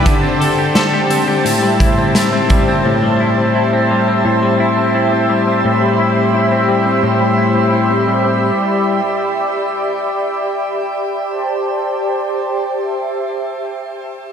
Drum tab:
HH |xxxxxxxx|--------|--------|--------|
SD |--o---o-|--------|--------|--------|
BD |o----o-o|--------|--------|--------|

HH |--------|
SD |--------|
BD |--------|